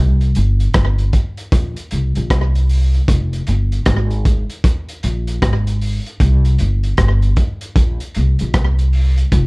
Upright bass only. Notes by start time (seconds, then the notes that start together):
Already playing: C2
0.36 G1
0.75 G1
1.53 A#1
1.92 C2
2.17 A#1
2.31 C2
3.09 F1
3.48 G1
3.87 G#1
5.04 A#1
5.43 G#1
6.21 C2
6.60 G1
6.99 G1
7.76 A#1
8.16 C2
8.41 A#1
8.55 C2
9.32 F1